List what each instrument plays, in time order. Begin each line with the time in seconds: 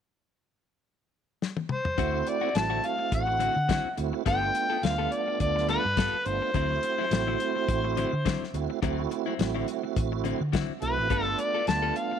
1.42 snare
1.57 high tom
1.69 harmonica C5, mid tom
1.85 floor tom
1.98 fingered electric bass D2, clean electric guitar D3 C4 E4 F#4, tonewheel organ A3 C4 E4 F#4, kick, closed hi-hat
2.26 harmonica D5, muted clean electric guitar stroke, closed hi-hat
2.41 clean electric guitar C4 E4 F#4
2.55 fingered electric bass A1, tonewheel organ A3 C4 E4 F#4, harmonica A5, snare, closed hi-hat
2.70 clean electric guitar D3 C4 E4 F#4
2.83 harmonica F5, muted clean electric guitar stroke, closed hi-hat
2.99 muted clean electric guitar stroke
3.12 fingered electric bass A1, harmonica F#5, kick, closed hi-hat
3.27 muted clean electric guitar stroke
3.39 clean electric guitar D3 C4 E4 F#4, closed hi-hat
3.56 fingered electric bass D3, muted clean electric guitar stroke
3.68 clean electric guitar D3 C4 E4 F#4, kick, snare, closed hi-hat
3.85 muted fingered electric bass stroke
3.97 fingered electric bass D2, tonewheel organ A3 C4 E4 F#4, muted clean electric guitar stroke, closed hi-hat
4.13 muted clean electric guitar stroke
4.26 fingered electric bass G1, clean electric guitar G3 B3 F4 A4, tonewheel organ A3 B3 D4 F4, harmonica G5, kick, closed hi-hat
4.54 muted clean electric guitar stroke, closed hi-hat
4.70 clean electric guitar B3 F4 A4
4.83 fingered electric bass D2, tonewheel organ A3 B3 D4 F4, harmonica F5, muted clean electric guitar stroke, snare, closed hi-hat
4.98 clean electric guitar G3 B3 F4 A4
5.11 harmonica D5, muted clean electric guitar stroke, closed hi-hat
5.28 muted clean electric guitar stroke
5.40 fingered electric bass D2, harmonica D5, kick, closed hi-hat
5.56 muted clean electric guitar stroke, snare
5.68 clean electric guitar G3 B3 F4 A4, harmonica B4, closed hi-hat
5.85 fingered electric bass G2
5.97 clean electric guitar G3 B3 F4 A4, kick, snare, closed hi-hat
6.13 muted fingered electric bass stroke
6.25 fingered electric bass G1, tonewheel organ A3 B3 D4 F4, harmonica C5, muted clean electric guitar stroke, closed hi-hat
6.42 muted clean electric guitar stroke
6.53 fingered electric bass D2, clean electric guitar D3 F#3 C4 E4, tonewheel organ A3 C4 E4 F#4, kick, closed hi-hat
6.83 muted clean electric guitar stroke, closed hi-hat
6.98 clean electric guitar F#3 C4 E4
7.11 fingered electric bass A1, tonewheel organ A3 C4 E4 F#4, muted clean electric guitar stroke, snare, closed hi-hat
7.27 clean electric guitar D3 F#3 C4 E4
7.40 muted clean electric guitar stroke, closed hi-hat
7.56 muted clean electric guitar stroke
7.68 fingered electric bass A1, kick, closed hi-hat
7.84 muted clean electric guitar stroke
7.97 clean electric guitar D3 F#3 C4 E4, closed hi-hat
8.12 fingered electric bass D3, muted clean electric guitar stroke
8.25 clean electric guitar D3 F#3 C4 E4, kick, snare, closed hi-hat
8.41 muted fingered electric bass stroke, snare
8.54 fingered electric bass D2, tonewheel organ A3 C4 E4 F#4, muted clean electric guitar stroke, closed hi-hat
8.70 muted clean electric guitar stroke
8.82 fingered electric bass D2, clean electric guitar D3 F#3 C4 E4, tonewheel organ A3 C4 E4 F#4, kick, closed hi-hat
9.11 muted clean electric guitar stroke, closed hi-hat
9.26 clean electric guitar F#3 C4 E4
9.39 fingered electric bass A1, tonewheel organ A3 C4 E4 F#4, muted clean electric guitar stroke, snare, closed hi-hat
9.54 clean electric guitar D3 F#3 C4 E4
9.68 closed hi-hat
9.83 muted clean electric guitar stroke
9.96 fingered electric bass A1, kick, closed hi-hat
10.12 muted clean electric guitar stroke
10.24 clean electric guitar D3 F#3 C4 E4, closed hi-hat
10.41 fingered electric bass D3, muted clean electric guitar stroke
10.53 clean electric guitar D3 F#3 C4 E4, kick, snare, closed hi-hat
10.69 muted fingered electric bass stroke
10.82 fingered electric bass B1, tonewheel organ A3 C4 E4 F#4, harmonica B4, muted clean electric guitar stroke, closed hi-hat
10.98 fingered electric bass A1, muted clean electric guitar stroke
11.10 fingered electric bass G1, clean electric guitar G3 B3 F4 A4, tonewheel organ A3 B3 D4 F4, kick, closed hi-hat
11.24 harmonica A4
11.39 harmonica D5, muted clean electric guitar stroke, closed hi-hat
11.54 clean electric guitar B3 F4 A4
11.67 fingered electric bass D2, tonewheel organ A3 B3 D4 F4, harmonica A5, muted clean electric guitar stroke, snare, closed hi-hat
11.82 clean electric guitar G3 B3 F4 A4
11.95 harmonica F5, muted clean electric guitar stroke, closed hi-hat
12.12 muted clean electric guitar stroke